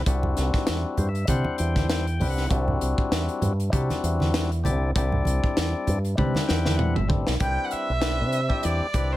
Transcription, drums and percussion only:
0.06 kick loud
0.06 closed hi-hat medium
0.23 low conga medium
0.37 snare soft
0.37 closed hi-hat medium
0.53 kick medium
0.53 snare soft
0.67 snare loud
0.67 closed hi-hat medium
0.97 closed hi-hat soft
0.97 low conga medium
1.15 closed hi-hat soft
1.27 kick medium
1.27 closed hi-hat medium
1.27 high conga medium
1.45 high conga medium
1.58 closed hi-hat medium
1.76 kick medium
1.76 snare soft
1.76 closed hi-hat soft
1.76 high conga medium
1.90 snare loud
1.90 closed hi-hat medium
2.07 closed hi-hat soft
2.21 open hi-hat medium
2.21 high conga medium
2.21 low conga medium
2.38 snare soft
2.51 kick loud
2.51 closed hi-hat medium
2.68 low conga medium
2.81 closed hi-hat medium
2.98 kick medium
3.12 snare loud
3.12 closed hi-hat medium
3.29 closed hi-hat soft
3.42 closed hi-hat medium
3.42 low conga medium
3.60 closed hi-hat soft
3.73 kick medium
3.73 closed hi-hat medium
3.73 high conga medium
3.90 snare soft
3.90 closed hi-hat soft
3.90 high conga medium
4.04 closed hi-hat medium
4.20 snare soft
4.20 high conga medium
4.34 snare loud
4.34 closed hi-hat medium
4.52 closed hi-hat soft
4.65 closed hi-hat medium
4.65 high conga medium
4.65 low conga medium
4.96 kick loud
4.96 closed hi-hat medium
5.12 low conga medium
5.25 closed hi-hat medium
5.25 high conga medium
5.44 kick medium
5.57 snare loud
5.57 closed hi-hat medium
5.87 closed hi-hat medium
5.87 low conga medium
6.05 closed hi-hat soft
6.18 kick medium
6.18 high tom medium
6.18 high conga medium
6.35 snare medium
6.35 high conga medium
6.49 snare medium
6.66 snare medium
6.66 high conga medium
6.79 mid tom medium
6.96 mid tom medium
7.10 kick medium
7.10 high conga medium
7.10 low conga medium
7.27 snare medium
7.40 kick medium
7.40 closed hi-hat medium
7.71 closed hi-hat soft
8.02 snare medium
8.02 closed hi-hat medium
8.32 closed hi-hat soft
8.50 kick medium
8.63 closed hi-hat medium
8.94 kick medium
8.94 closed hi-hat medium

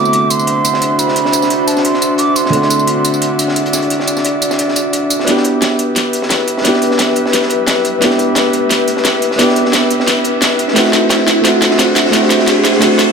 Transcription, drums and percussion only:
0.05 tambourine soft
0.13 closed hi-hat medium
0.30 closed hi-hat medium
0.30 tambourine medium
0.39 tambourine soft
0.47 closed hi-hat medium
0.65 closed hi-hat medium
0.65 tambourine medium
0.74 snare medium
0.82 closed hi-hat medium
0.82 tambourine soft
0.99 closed hi-hat medium
0.99 tambourine medium
1.08 snare soft
1.16 closed hi-hat medium
1.25 snare medium
1.32 closed hi-hat medium
1.32 tambourine medium
1.42 snare medium
1.42 tambourine soft
1.50 closed hi-hat medium
1.68 closed hi-hat medium
1.68 tambourine medium
1.77 snare medium
1.77 tambourine soft
1.85 closed hi-hat medium
1.94 snare soft
2.02 closed hi-hat medium
2.02 tambourine medium
2.18 closed hi-hat medium
2.18 tambourine soft
2.36 closed hi-hat medium
2.36 tambourine medium
2.46 snare soft
2.53 closed hi-hat medium
2.62 snare medium
2.70 closed hi-hat medium
2.70 tambourine medium
2.79 tambourine soft
2.87 closed hi-hat medium
3.05 closed hi-hat medium
3.05 tambourine medium
3.14 tambourine soft
3.22 closed hi-hat medium
3.22 closed hi-hat loud
3.39 closed hi-hat medium
3.39 tambourine medium
3.48 snare medium
3.56 closed hi-hat medium
3.56 tambourine soft
3.66 closed hi-hat medium
3.73 snare medium
3.73 closed hi-hat medium
3.73 tambourine medium
3.82 closed hi-hat medium
3.90 closed hi-hat medium
4.00 snare medium
4.08 closed hi-hat medium
4.08 tambourine medium
4.17 snare soft
4.17 tambourine soft
4.25 closed hi-hat medium
4.42 closed hi-hat medium
4.42 tambourine medium
4.51 snare medium
4.51 tambourine soft
4.59 closed hi-hat medium
4.59 closed hi-hat loud
4.68 snare soft
4.76 closed hi-hat medium
4.76 tambourine medium
4.93 closed hi-hat medium
4.93 tambourine soft
5.10 closed hi-hat medium
5.10 tambourine medium
5.20 snare soft
5.27 snare soft
5.27 closed hi-hat medium
5.37 snare medium
5.44 closed hi-hat medium
5.62 snare soft
5.62 snare loud
5.62 closed hi-hat medium
5.79 closed hi-hat medium
5.96 snare medium
5.96 closed hi-hat medium
5.96 closed hi-hat loud
6.13 closed hi-hat medium
6.22 snare medium
6.30 snare loud
6.30 snare medium
6.30 closed hi-hat medium
6.48 closed hi-hat medium
6.57 snare soft
6.65 snare medium
6.65 closed hi-hat medium
6.73 snare soft
6.82 closed hi-hat medium
6.91 snare soft
6.99 snare loud
6.99 snare medium
6.99 closed hi-hat medium
7.16 closed hi-hat medium
7.26 snare medium
7.33 snare medium
7.33 closed hi-hat medium
7.42 snare soft
7.50 closed hi-hat medium
7.67 snare loud
7.67 snare medium
7.67 closed hi-hat medium
7.85 closed hi-hat medium
8.02 snare medium
8.02 closed hi-hat medium
8.10 snare medium
8.19 closed hi-hat medium
8.35 snare loud
8.35 snare medium
8.35 closed hi-hat medium
8.53 closed hi-hat medium
8.71 snare medium
8.71 closed hi-hat medium
8.88 closed hi-hat medium
8.97 snare soft
9.05 snare medium
9.05 snare loud
9.05 closed hi-hat medium
9.22 closed hi-hat medium
9.31 snare medium
9.39 snare medium
9.39 closed hi-hat medium
9.49 snare medium
9.56 closed hi-hat medium
9.65 snare medium
9.73 snare loud
9.73 snare medium
9.73 closed hi-hat medium
9.91 closed hi-hat medium
10.00 snare medium
10.07 snare medium
10.07 closed hi-hat medium
10.24 closed hi-hat medium
10.42 snare loud
10.42 snare medium
10.42 closed hi-hat medium
10.59 closed hi-hat medium
10.68 snare soft
10.76 snare medium
10.76 closed hi-hat medium
10.85 snare medium
10.93 snare medium
10.93 closed hi-hat medium
11.10 snare loud
11.10 snare medium
11.10 closed hi-hat medium
11.27 snare medium
11.27 closed hi-hat medium
11.45 snare medium
11.45 closed hi-hat medium
11.62 snare medium
11.62 closed hi-hat medium
11.71 snare soft
11.79 snare loud
11.79 snare medium
11.79 closed hi-hat medium
11.95 snare medium
11.95 closed hi-hat medium
12.05 snare soft
12.13 snare medium
12.13 closed hi-hat medium
12.22 snare medium
12.30 snare medium
12.30 closed hi-hat medium
12.39 snare medium
12.47 snare medium
12.47 snare loud
12.47 closed hi-hat medium
12.65 snare medium
12.65 closed hi-hat medium
12.73 snare medium
12.82 snare medium
12.82 closed hi-hat medium
12.90 snare soft
12.99 snare medium
12.99 closed hi-hat medium

